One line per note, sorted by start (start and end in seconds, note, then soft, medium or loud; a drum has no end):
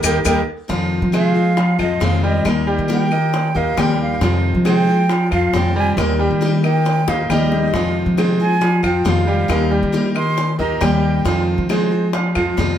0.03 0.20 D#2 loud
0.03 0.17 G3 medium
0.03 0.17 A#3 loud
0.03 0.17 D#4 loud
0.03 0.18 D#4 loud
0.03 0.18 G4 loud
0.03 0.18 A#4 loud
0.03 0.19 G5 medium
0.03 cowbell loud
0.03 claves loud
0.03 maracas loud
0.25 0.42 D#2 medium
0.25 0.39 G3 loud
0.25 0.40 A#3 loud
0.25 0.40 D#4 loud
0.25 0.39 D#4 medium
0.25 0.39 G4 loud
0.25 0.40 A#4 loud
0.25 0.41 G5 medium
0.25 cowbell loud
0.25 claves loud
0.25 maracas loud
0.68 1.01 F2 loud
0.68 1.11 C3 medium
0.68 1.12 D#3 medium
0.68 1.05 F3 medium
0.68 1.13 G#3 medium
0.68 1.12 C4 medium
0.68 1.06 F4 medium
0.68 1.13 F4 medium
0.68 1.06 F5 medium
0.68 high bongo medium
1.02 1.75 F3 loud
1.12 1.34 C3 medium
1.12 1.35 D#3 medium
1.12 1.35 G#3 medium
1.12 1.50 G#3 medium
1.12 1.34 C4 medium
1.12 1.33 F4 medium
1.12 1.50 G#4 medium
1.12 1.50 C5 medium
1.12 high bongo medium
1.12 claves medium
1.17 1.77 F5 medium
1.34 1.56 G#3 soft
1.34 1.57 C4 soft
1.34 1.56 F4 medium
1.57 1.75 F3 medium
1.57 1.75 F4 medium
1.57 1.76 F5 medium
1.57 muted steel-string acoustic guitar stroke medium
1.57 high bongo medium
1.79 2.00 F2 medium
1.79 2.15 F3 medium
1.79 2.01 G#3 soft
1.79 2.01 C4 medium
1.79 2.00 F4 medium
1.79 2.16 F4 medium
1.79 2.06 D#5 medium
1.79 2.16 F5 medium
1.79 claves medium
2.00 2.43 F2 medium
2.00 2.44 C3 medium
2.00 2.44 D#3 medium
2.00 2.45 G#3 medium
2.00 2.45 C4 medium
2.00 2.45 F4 medium
2.00 high bongo medium
2.00 low bongo medium
2.04 2.25 F5 medium
2.23 2.41 G3 medium
2.23 2.42 G4 medium
2.23 2.45 D#5 medium
2.23 2.42 G5 medium
2.45 2.77 D#2 loud
2.45 2.87 D#3 medium
2.45 2.87 G3 medium
2.45 2.64 A#3 medium
2.45 2.88 A#3 medium
2.45 2.88 D#4 medium
2.45 2.89 G4 medium
2.45 2.64 A#4 medium
2.45 2.64 D#5 medium
2.45 high bongo medium
2.45 claves medium
2.67 3.03 G3 medium
2.67 3.03 G4 medium
2.67 3.04 G5 medium
2.67 high bongo soft
2.78 3.52 D#3 loud
2.88 3.10 D#3 medium
2.88 3.10 G3 medium
2.88 3.11 A#3 medium
2.88 3.11 D#4 medium
2.88 3.10 G4 medium
2.88 high bongo medium
2.93 3.58 G5 medium
3.11 3.48 A#3 medium
3.11 3.33 A#3 soft
3.11 3.33 D#4 soft
3.11 3.32 G4 medium
3.11 3.48 A#4 medium
3.11 3.48 D#5 medium
3.11 high bongo soft
3.11 claves medium
3.33 muted steel-string acoustic guitar stroke medium
3.33 high bongo medium
3.55 3.76 D#2 medium
3.55 3.74 A#3 medium
3.55 3.77 A#3 soft
3.55 3.77 D#4 medium
3.55 3.76 G4 medium
3.55 3.74 A#4 medium
3.55 3.74 D#5 medium
3.55 3.81 F5 medium
3.55 high bongo soft
3.77 4.19 D#2 medium
3.77 4.20 D#3 medium
3.77 4.21 G3 medium
3.77 4.14 G3 medium
3.77 4.21 A#3 medium
3.77 4.21 D#4 medium
3.77 4.14 G4 medium
3.77 4.22 G4 medium
3.77 4.14 G5 medium
3.77 4.01 G5 medium
3.77 high bongo medium
3.77 low bongo medium
3.77 claves medium
4.01 4.21 F5 medium
4.21 4.53 F2 loud
4.21 4.64 C3 medium
4.21 4.64 D#3 medium
4.21 4.58 F3 medium
4.21 4.65 G#3 medium
4.21 4.65 C4 medium
4.21 4.58 F4 medium
4.21 4.66 F4 medium
4.21 4.58 F5 medium
4.21 high bongo medium
4.55 5.28 F3 medium
4.65 4.86 C3 medium
4.65 4.87 D#3 medium
4.65 5.01 G#3 medium
4.65 4.87 G#3 medium
4.65 4.87 C4 medium
4.65 4.86 F4 medium
4.65 5.01 G#4 medium
4.65 5.02 C5 medium
4.65 5.29 G5 loud
4.65 high bongo medium
4.65 claves medium
4.87 5.10 G#3 soft
4.87 5.09 C4 soft
4.87 5.09 F4 soft
5.09 5.27 F3 medium
5.09 5.28 F4 medium
5.09 5.28 F5 medium
5.09 muted steel-string acoustic guitar stroke medium
5.09 high bongo medium
5.31 5.53 F2 medium
5.31 5.67 F3 medium
5.31 5.53 G#3 soft
5.31 5.53 C4 medium
5.31 5.53 F4 medium
5.31 5.68 F4 medium
5.31 5.68 F5 loud
5.31 5.58 F5 medium
5.31 claves medium
5.53 5.95 F2 medium
5.53 5.97 C3 medium
5.53 5.96 D#3 medium
5.53 5.97 G#3 medium
5.53 5.97 C4 medium
5.53 5.98 F4 medium
5.53 5.77 G5 medium
5.53 high bongo medium
5.53 low bongo medium
5.76 5.94 G3 medium
5.76 5.94 G4 medium
5.76 5.94 G5 medium
5.76 5.91 G#5 loud
5.97 6.29 D#2 loud
5.97 6.40 D#3 medium
5.97 6.40 G3 medium
5.97 6.16 A#3 medium
5.97 6.41 A#3 medium
5.97 6.41 D#4 medium
5.97 6.42 G4 medium
5.97 6.16 A#4 medium
5.97 6.16 D#5 medium
5.97 high bongo medium
5.97 claves medium
6.19 6.55 G3 medium
6.19 6.56 G4 medium
6.19 6.56 G5 medium
6.19 high bongo soft
6.31 7.04 D#3 loud
6.41 6.62 D#3 medium
6.41 6.63 G3 medium
6.41 6.63 A#3 medium
6.41 6.63 D#4 medium
6.41 6.62 G4 medium
6.41 high bongo medium
6.63 7.00 A#3 medium
6.63 6.85 A#3 soft
6.63 6.85 D#4 soft
6.63 6.85 G4 soft
6.63 7.00 A#4 medium
6.63 7.00 D#5 medium
6.63 7.10 G5 loud
6.63 high bongo soft
6.63 claves medium
6.85 muted steel-string acoustic guitar stroke medium
6.85 high bongo medium
7.07 7.29 D#2 medium
7.07 7.25 A#3 medium
7.07 7.30 A#3 soft
7.07 7.29 D#4 soft
7.07 7.29 G4 medium
7.07 7.26 A#4 medium
7.07 7.26 D#5 medium
7.07 7.34 F5 medium
7.07 high bongo medium
7.30 7.71 D#2 medium
7.30 7.73 D#3 medium
7.30 7.66 G3 medium
7.30 7.73 G3 medium
7.30 7.74 A#3 medium
7.30 7.74 D#4 medium
7.30 7.66 G4 medium
7.30 7.74 G4 medium
7.30 7.97 D#5 medium
7.30 7.66 G5 medium
7.30 low bongo medium
7.30 claves medium
7.52 low bongo medium
7.73 8.05 F2 medium
7.73 8.16 C3 medium
7.73 8.17 D#3 medium
7.73 8.10 F3 medium
7.73 8.17 G#3 medium
7.73 8.18 C4 medium
7.73 8.10 F4 medium
7.73 8.18 F4 medium
7.73 8.10 F5 medium
7.73 high bongo medium
8.06 8.79 F3 medium
8.17 8.39 C3 medium
8.17 8.39 D#3 medium
8.17 8.54 G#3 medium
8.17 8.39 G#3 medium
8.17 8.39 C4 medium
8.17 8.38 F4 medium
8.17 8.54 G#4 medium
8.17 8.54 C5 medium
8.17 high bongo medium
8.17 claves medium
8.40 8.60 G#3 soft
8.40 8.61 C4 soft
8.40 8.61 F4 medium
8.40 8.82 G#5 loud
8.61 8.79 F3 medium
8.61 8.80 F4 medium
8.61 8.80 F5 medium
8.61 muted steel-string acoustic guitar stroke medium
8.61 high bongo medium
8.83 9.04 F2 medium
8.83 9.19 F3 loud
8.83 9.04 G#3 soft
8.83 9.05 C4 medium
8.83 9.04 F4 medium
8.83 9.20 F4 loud
8.83 9.20 F5 medium
8.83 9.11 G5 medium
8.83 claves medium
9.04 9.47 F2 medium
9.04 9.48 C3 medium
9.04 9.47 D#3 medium
9.04 9.49 G#3 medium
9.04 9.49 C4 medium
9.04 9.49 F4 medium
9.04 high bongo medium
9.04 low bongo medium
9.09 9.73 F5 medium
9.27 9.45 G3 medium
9.27 9.46 G4 medium
9.27 9.46 G5 medium
9.48 9.81 D#2 loud
9.48 9.91 D#3 medium
9.48 9.92 G3 medium
9.48 9.67 A#3 medium
9.48 9.92 A#3 medium
9.48 9.93 D#4 medium
9.48 9.93 G4 medium
9.48 9.68 A#4 medium
9.48 9.68 D#5 medium
9.48 high bongo medium
9.48 claves medium
9.71 10.07 G3 medium
9.71 10.07 G4 medium
9.71 10.08 G5 medium
9.71 high bongo soft
9.83 10.56 D#3 loud
9.92 10.14 D#3 medium
9.92 10.14 G3 medium
9.92 10.15 A#3 medium
9.92 10.14 D#4 medium
9.92 10.13 G4 medium
9.92 high bongo medium
10.14 10.51 A#3 medium
10.14 10.37 A#3 soft
10.14 10.37 D#4 soft
10.14 10.36 G4 soft
10.14 10.52 A#4 medium
10.14 10.52 D#5 medium
10.14 10.57 C6 loud
10.14 high bongo soft
10.14 claves medium
10.37 muted steel-string acoustic guitar stroke medium
10.37 high bongo medium
10.59 10.80 D#2 medium
10.59 10.77 A#3 medium
10.59 10.81 A#3 soft
10.59 10.81 D#4 medium
10.59 10.80 G4 medium
10.59 10.77 A#4 medium
10.59 10.78 D#5 medium
10.59 10.86 A#5 medium
10.59 high bongo soft
10.81 11.23 D#2 medium
10.81 11.24 D#3 medium
10.81 11.17 G3 medium
10.81 11.25 G3 medium
10.81 11.25 A#3 medium
10.81 11.25 D#4 medium
10.81 11.18 G4 medium
10.81 11.25 G4 medium
10.81 11.18 G5 medium
10.81 11.49 G5 medium
10.81 high bongo medium
10.81 low bongo medium
10.81 claves medium
11.25 11.57 F2 loud
11.25 11.68 C3 medium
11.25 11.68 D#3 medium
11.25 11.62 F3 medium
11.25 11.69 G#3 medium
11.25 11.69 C4 medium
11.25 11.62 F4 medium
11.25 11.69 F4 medium
11.25 11.62 F5 medium
11.25 high bongo medium
11.58 12.31 F3 loud
11.69 11.91 C3 medium
11.69 11.91 D#3 medium
11.69 12.06 G#3 medium
11.69 11.91 G#3 medium
11.69 11.91 C4 medium
11.69 11.90 F4 medium
11.69 12.06 G#4 medium
11.69 12.06 C5 medium
11.69 high bongo medium
11.69 claves medium
11.91 12.13 G#3 soft
11.91 12.13 C4 soft
11.91 12.12 F4 soft
12.13 12.32 F3 medium
12.13 12.32 F4 medium
12.13 12.32 F5 medium
12.13 muted steel-string acoustic guitar stroke medium
12.13 high bongo medium
12.35 12.57 F2 medium
12.35 12.72 F3 loud
12.35 12.57 G#3 soft
12.35 12.57 C4 medium
12.35 12.56 F4 medium
12.35 12.72 F4 medium
12.35 12.72 F5 medium
12.35 claves medium
12.57 12.78 F2 medium
12.57 12.78 C3 medium
12.57 12.78 D#3 medium
12.57 12.78 G#3 medium
12.57 12.78 C4 medium
12.57 12.78 F4 medium
12.57 high bongo medium
12.57 low bongo medium